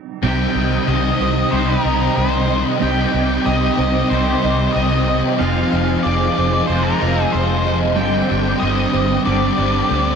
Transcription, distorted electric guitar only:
0.22 0.87 C3 loud
0.22 0.58 G3 loud
0.22 0.55 C4 loud
0.56 0.89 G3 medium
0.56 0.91 C4 medium
0.88 1.51 C3 medium
0.88 1.22 G3 medium
0.88 1.19 C4 medium
1.20 1.52 G3 medium
1.20 1.54 C4 medium
1.52 2.15 C3 medium
1.52 1.86 G3 medium
1.52 1.84 C4 loud
1.84 2.17 G3 medium
1.84 2.19 C4 medium
2.16 2.79 C3 medium
2.16 2.50 G3 medium
2.16 2.47 C4 medium
2.47 2.81 G3 medium
2.47 2.84 C4 medium
2.80 3.44 C3 loud
2.80 3.15 G3 loud
2.80 3.13 C4 loud
3.13 3.45 G3 medium
3.13 3.47 C4 medium
3.45 4.08 C3 medium
3.45 3.79 G3 medium
3.45 3.77 C4 medium
3.77 4.10 G3 medium
3.77 4.12 C4 medium
4.09 4.72 C3 loud
4.09 4.43 G3 loud
4.09 4.41 C4 loud
4.42 4.74 G3 medium
4.42 4.77 C4 medium
4.74 5.37 C3 medium
4.74 5.08 G3 medium
4.74 5.06 C4 medium
5.07 5.39 G3 medium
5.07 8.01 C4 medium
5.38 6.02 F2 loud
5.38 5.73 C3 loud
5.38 5.69 F3 loud
5.70 6.04 C3 medium
5.70 6.06 F3 medium
6.04 6.66 F2 medium
6.04 6.37 C3 medium
6.04 6.34 F3 medium
6.35 6.67 C3 medium
6.35 6.69 F3 medium
6.67 7.30 F2 loud
6.67 7.01 C3 loud
6.67 6.98 F3 loud
6.99 7.32 C3 medium
6.99 7.33 F3 medium
7.31 7.95 F2 medium
7.31 7.66 C3 medium
7.31 7.63 F3 medium
7.64 7.96 C3 medium
7.64 7.95 F3 medium
7.96 8.59 G2 loud
7.96 8.30 D3 loud
7.96 8.27 G3 loud
8.28 8.60 D3 medium
8.28 8.62 G3 medium
8.60 9.24 G2 medium
8.60 8.93 D3 medium
8.60 8.91 G3 medium
8.92 9.25 D3 medium
8.92 9.27 G3 medium
9.25 9.89 G2 medium
9.25 9.59 D3 medium
9.25 9.57 G3 loud
9.57 9.91 D3 medium
9.57 9.93 G3 medium
9.90 10.15 G2 medium
9.90 10.15 D3 medium
9.90 10.15 G3 medium

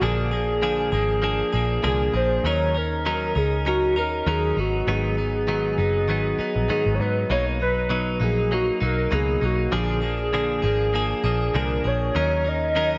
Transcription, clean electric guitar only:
0.01 0.32 A#2 medium
0.01 0.32 D3 medium
0.01 0.32 F3 medium
0.01 0.32 A#3 medium
0.01 0.31 D4 medium
0.01 0.30 G#4 medium
0.31 0.61 F3 soft
0.31 0.61 A#3 soft
0.31 0.62 D4 soft
0.31 0.62 G#4 medium
0.62 0.92 A#2 medium
0.62 0.92 D3 medium
0.62 0.93 F3 medium
0.62 0.93 A#3 medium
0.62 0.92 D4 medium
0.62 0.91 G#4 medium
0.92 1.21 F3 soft
0.92 1.21 A#3 soft
0.92 1.22 D4 soft
0.92 1.23 G#4 medium
1.22 1.53 F3 medium
1.22 1.53 A#3 medium
1.22 1.52 D4 medium
1.22 1.51 G#4 medium
1.53 1.82 F3 soft
1.53 1.83 A#3 medium
1.53 1.83 D4 medium
1.53 1.83 G#4 medium
1.83 2.13 A#2 medium
1.83 2.14 D3 medium
1.83 2.14 F3 medium
1.83 2.14 A#3 medium
1.83 2.13 D4 medium
1.83 2.12 G#4 medium
2.14 2.45 F3 soft
2.14 2.45 A#3 soft
2.14 2.44 D4 soft
2.14 2.44 G#4 medium
2.45 2.75 D#3 medium
2.45 2.75 F#3 medium
2.45 2.75 C#4 medium
2.45 2.74 D#4 medium
2.45 2.73 A#4 medium
2.74 3.05 C#4 soft
2.74 3.05 D#4 soft
2.74 3.05 A#4 medium
3.05 3.35 D#3 medium
3.05 3.36 F#3 medium
3.05 3.36 C#4 medium
3.05 3.35 D#4 medium
3.05 3.34 A#4 medium
3.35 3.65 C#4 soft
3.35 3.66 D#4 soft
3.35 3.66 A#4 soft
3.65 3.96 F#3 medium
3.65 3.96 C#4 medium
3.65 3.96 D#4 medium
3.65 3.95 A#4 medium
3.96 4.26 C#4 soft
3.96 4.27 D#4 soft
3.96 4.26 A#4 medium
4.27 4.57 D#3 medium
4.27 4.57 F#3 medium
4.27 4.57 C#4 medium
4.27 4.56 D#4 medium
4.27 4.57 A#4 medium
4.57 4.87 F#3 soft
4.57 4.87 B3 soft
4.57 4.87 D#4 medium
4.87 5.17 G#2 medium
4.87 5.18 D#3 medium
4.87 5.18 F#3 medium
4.87 5.17 B3 medium
4.87 5.16 D#4 medium
5.17 5.47 F#3 soft
5.17 5.47 B3 soft
5.17 5.47 D#4 soft
5.47 5.78 G#2 medium
5.47 5.78 D#3 medium
5.47 5.78 F#3 medium
5.47 5.78 B3 medium
5.47 5.77 D#4 medium
5.78 6.08 F#3 soft
5.78 6.09 B3 soft
5.78 6.08 D#4 medium
6.08 6.38 D#3 medium
6.08 6.39 F#3 medium
6.08 6.39 B3 medium
6.08 6.37 D#4 medium
6.39 6.68 F#3 soft
6.39 6.69 B3 soft
6.39 6.69 D#4 medium
6.68 6.99 G#2 medium
6.68 7.00 D#3 medium
6.68 7.00 F#3 medium
6.68 7.00 B3 medium
6.68 6.99 D#4 medium
7.00 7.29 F#3 soft
7.00 7.30 B3 soft
7.00 7.30 D#4 soft
7.30 7.60 B2 medium
7.30 7.60 F#3 medium
7.30 7.61 A#3 medium
7.30 7.58 D#4 medium
7.60 7.89 F#3 soft
7.60 7.90 D#4 soft
7.89 8.20 B2 medium
7.89 8.21 F#3 medium
7.89 8.18 D#4 medium
8.20 8.50 F#3 soft
8.20 8.51 A#3 soft
8.20 8.51 D#4 medium
8.51 8.81 F#3 medium
8.51 8.80 A#3 medium
8.51 8.79 D#4 medium
8.80 9.10 F#3 soft
8.80 9.11 A#3 soft
8.80 9.11 D#4 soft
9.11 9.42 B2 medium
9.11 9.42 F#3 medium
9.11 9.42 A#3 medium
9.11 9.40 D#4 medium
9.41 9.72 F#3 soft
9.41 9.71 A#3 soft
9.41 9.72 D#4 soft
9.71 10.02 A#2 medium
9.71 10.03 D3 medium
9.71 10.03 F3 medium
9.71 10.02 A#3 medium
9.71 10.01 D4 medium
9.71 10.01 G#4 medium
10.02 10.32 F3 soft
10.02 10.33 A#3 soft
10.02 10.33 D4 soft
10.02 10.33 G#4 soft
10.33 10.63 A#2 medium
10.33 10.64 D3 medium
10.33 10.63 F3 medium
10.33 10.62 A#3 medium
10.33 10.62 D4 medium
10.33 10.61 G#4 medium
10.62 10.92 F3 soft
10.62 10.93 A#3 medium
10.62 10.94 D4 medium
10.62 10.93 G#4 medium
10.93 11.24 F3 medium
10.93 11.24 A#3 medium
10.93 11.23 D4 medium
10.93 11.23 G#4 medium
11.24 11.53 F3 medium
11.24 11.54 A#3 soft
11.24 11.54 D4 medium
11.24 11.54 G#4 medium
11.54 11.85 A#2 medium
11.54 11.85 D3 medium
11.54 11.85 F3 medium
11.54 11.84 A#3 medium
11.54 11.84 D4 medium
11.54 11.83 G#4 medium
11.84 12.15 F3 soft
11.84 12.15 A#3 soft
11.84 12.15 D4 soft
11.84 12.15 G#4 medium
12.15 12.45 D#3 medium
12.15 12.46 F#3 medium
12.15 12.46 C#4 medium
12.15 12.45 D#4 medium
12.15 12.43 A#4 medium
12.44 12.75 C#4 soft
12.44 12.75 D#4 soft
12.44 12.75 A#4 soft
12.75 12.98 D#3 medium
12.75 12.98 F#3 medium
12.75 12.98 C#4 medium
12.75 12.98 D#4 medium
12.75 12.98 A#4 medium

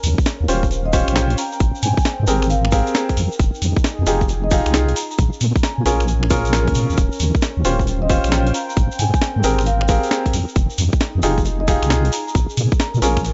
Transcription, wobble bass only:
0.04 0.16 D#2 medium
0.41 0.47 D#2 medium
0.48 1.03 D#1 loud
1.08 1.36 A#1 medium
1.60 1.72 G#1 loud
1.83 1.95 G#2 medium
2.20 2.26 G#2 loud
2.28 2.82 G#1 loud
3.17 3.29 F2 medium
3.40 3.51 F1 loud
3.62 3.74 F2 medium
3.99 4.05 F2 loud
4.07 4.62 F1 loud
4.66 4.94 C2 medium
5.19 5.30 A#1 loud
5.41 5.53 A#2 medium
5.78 5.84 A#2 medium
5.86 6.69 A#1 loud
6.68 6.74 D#2 medium
6.75 6.87 A#2 medium
6.90 6.96 D#2 medium
6.98 7.10 D#1 loud
7.20 7.32 D#2 medium
7.57 7.63 D#2 loud
7.65 8.20 D#1 loud
8.24 8.52 A#1 medium
8.77 8.89 G#1 loud
8.99 9.11 G#2 medium
9.36 9.42 G#2 loud
9.44 9.99 G#1 loud
10.34 10.45 F2 medium
10.56 10.68 F1 loud
10.78 10.90 F2 medium
11.15 11.22 F2 loud
11.23 11.78 F1 loud
11.82 12.10 C2 medium
12.35 12.47 A#1 loud
12.57 12.69 A#2 medium
12.94 13.01 A#2 loud
13.02 13.33 A#1 loud

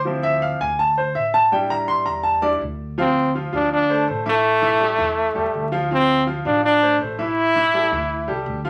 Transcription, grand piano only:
0.05 0.57 F3 medium
0.05 0.58 C4 medium
0.05 0.58 E4 medium
0.23 0.41 E5 loud
0.42 0.60 F5 medium
0.61 0.78 G#5 loud
0.79 0.97 A5 loud
0.98 1.15 C5 medium
1.15 1.33 E5 medium
1.34 1.52 A5 loud
1.52 2.40 G3 medium
1.52 2.41 D4 soft
1.52 2.41 E4 medium
1.52 1.70 G5 medium
1.70 1.88 A#5 loud
1.88 2.06 C6 loud
2.06 2.24 A#5 medium
2.23 2.42 A5 medium
2.42 2.59 G3 soft
2.42 2.59 D4 soft
2.42 2.59 E4 medium
2.42 2.53 D5 loud
2.98 3.28 F3 medium
2.98 3.28 F4 medium
2.98 3.28 F5 medium
3.35 3.50 F3 medium
3.35 3.50 F4 medium
3.35 3.50 F5 medium
3.53 3.83 F3 medium
3.53 3.83 F4 medium
3.53 3.83 F5 medium
3.89 4.04 A3 medium
3.89 4.04 A4 medium
3.89 4.05 C5 medium
4.08 4.23 A3 medium
4.08 4.23 A4 medium
4.08 4.23 C5 medium
4.26 4.56 E3 medium
4.26 4.56 E4 loud
4.26 4.56 E5 medium
4.62 4.77 E3 loud
4.62 4.77 E4 medium
4.62 4.78 E5 loud
4.80 4.95 G3 medium
4.80 4.96 G4 medium
4.80 4.96 A4 medium
4.98 5.28 E3 medium
4.98 5.29 E4 medium
4.98 5.29 E5 medium
5.34 5.65 G3 medium
5.34 5.65 G4 medium
5.34 5.65 A4 medium
5.72 5.87 F3 loud
5.72 5.87 F4 loud
5.72 5.87 F5 loud
5.91 6.21 F3 medium
5.91 6.20 F4 medium
5.91 6.21 F5 medium
6.26 6.42 F3 medium
6.26 6.42 F4 medium
6.26 6.42 F5 medium
6.45 6.75 F3 medium
6.45 6.75 F4 medium
6.45 6.76 F5 medium
6.82 6.97 A3 medium
6.82 6.97 A4 medium
6.82 6.97 C5 medium
7.00 7.15 A3 medium
7.00 7.15 A4 medium
7.00 7.16 C5 medium
7.19 7.48 E3 medium
7.19 7.48 E4 medium
7.19 7.49 E5 medium
7.56 7.70 E3 loud
7.56 7.70 E4 loud
7.56 7.71 E5 medium
7.74 7.88 G3 medium
7.74 7.89 G4 medium
7.74 7.89 A4 medium
7.92 8.22 E3 medium
7.92 8.22 E4 medium
7.92 8.22 E5 medium
8.28 8.58 G3 medium
8.28 8.58 G4 medium
8.28 8.58 A4 medium
8.64 8.70 F3 loud
8.64 8.70 F4 medium
8.64 8.70 F5 loud

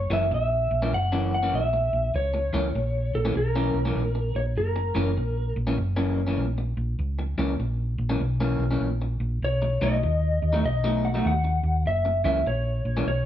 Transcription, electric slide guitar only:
0.00 0.13 C#5 medium
0.13 0.33 E5 medium
0.34 0.94 E5 medium
0.94 1.33 F#5 loud
1.34 1.53 F#5 medium
1.55 2.11 E5 medium
2.16 3.11 C#5 medium
3.15 3.35 A4 medium
3.37 4.39 A#4 medium
4.36 4.42 C#5 medium
4.58 5.53 A#4 medium
9.44 9.83 C#5 medium
9.83 10.64 D#5 medium
10.66 11.05 D#5 medium
11.05 11.26 F#5 medium
11.27 11.87 F#5 medium
11.87 12.24 E5 medium
12.25 12.45 E5 medium
12.47 13.06 C#5 medium
13.08 13.26 C#5 medium

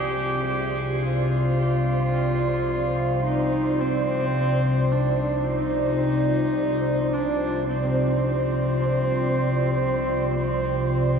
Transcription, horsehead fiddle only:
0.00 1.04 G4 loud
1.02 3.25 F4 loud
3.25 3.82 D#4 loud
3.80 4.93 C4 loud
4.91 5.48 D4 medium
5.47 7.15 D#4 loud
7.13 7.68 D4 medium
7.69 11.19 C4 medium

